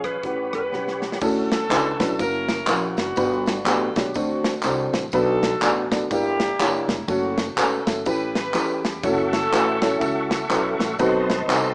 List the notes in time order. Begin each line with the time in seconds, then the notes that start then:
Already playing: A#1 G#3 C#4 G#4 C#5 D#5 F5
0.01 G#4 B4, kick, cross-stick, closed hi-hat
0.21 A1 A2 C#4 E4 G4 B4 F#5 B5, kick, closed hi-hat
0.25 G4 B4 F#5
0.50 G1 E4 G4 B4, cross-stick, closed hi-hat
0.55 B4
0.72 B1 C#4 G4 B4 F#5, snare
0.88 snare
1.02 snare
1.12 snare
1.21 D2 D3 A3 C#4 E4 F#4 A4, kick, crash, tambourine
1.51 snare, ride, tambourine
1.69 C#2 C#4 D4 E4 F#4 B4, clap, ride, tambourine
1.99 B1 C#4 D4 E4 F#4 B4, kick, snare, ride, tambourine
2.18 F#1 A#3 C#4 E4 F#4 A#4, kick, ride, tambourine
2.49 snare, ride, tambourine
2.67 A#1 A#3 C#4 E4 F#4 A#4, clap, ride, tambourine
2.97 F#1 B3 D4 F#4, snare, ride, tambourine
3.16 G1 G2 G3 B3 D4 F#4 B4, kick, ride, tambourine
3.46 snare, ride, tambourine
3.64 A1 B3 D4 F#4 G4 A4 B4, clap, ride, tambourine
3.96 B1 B3 D4 F#4 G4 C#5, kick, snare, ride, tambourine
4.06 G4
4.14 D2 D3 A3 C4 D4 F#4 A4 C5, kick, ride, tambourine
4.44 snare, ride, tambourine
4.62 C2 C4 D4 F#4 A4 C5, clap, ride, tambourine
4.93 A1, snare, ride, tambourine
5.12 B1 B2 B3 D4 F#4 A4 B4, kick, ride, tambourine
5.43 snare, ride, tambourine
5.62 A1 B3 D4 F#4 A4 D5, clap, ride, tambourine
5.91 B3 D4 F#4 A4 D5, kick, snare, ride, tambourine
6.11 G1 G2 A#3 D4 E4 G4 A#4, kick, ride, tambourine
6.40 snare, ride, tambourine
6.59 F#1 A#3 D4 E4 G4 C#5, clap, ride, tambourine
6.88 E1, snare, ride, tambourine
7.08 F#1 A3 C#4 F#4 A4 C#5, kick, ride, tambourine
7.37 snare, ride, tambourine
7.56 E1 A3 C#4 F#4 A4 B4, clap, ride, tambourine
7.86 F#1 A3 C#4 F#4 A4 E5, kick, snare, ride, tambourine
8.05 A1 A2 C#4 E4 G4 A4 B4, kick, ride, tambourine
8.35 E4 G4 B4, snare, ride, tambourine
8.54 E2 C#4 E4 G4 A4 B4, clap, ride, tambourine
8.85 snare, ride, tambourine
9.03 F#1 C#4 E4 F#4 A4 C#5 E5 F#5 C#6, kick, ride, tambourine
9.33 snare, ride, tambourine
9.52 A1 C#4 E4 F#4 A4 B4, clap, ride, tambourine
9.81 C#4 E4 F#4 A4 C#5, kick, snare, ride, tambourine
10.00 C#2 C#4 E4 F#4 A4 E5, kick, ride, tambourine
10.31 snare, ride, tambourine
10.49 B1 A3 C#4 E4 F#4 A4 B4, clap, ride, tambourine
10.79 A1, snare, ride, tambourine
10.99 B1 B2 A3 C4 D#4 F#4 A4 B4 D#5 A5 C6, kick, ride, tambourine
11.29 snare, ride, tambourine
11.48 C2 C4 D#4 F#4 A4 B4, clap, ride, tambourine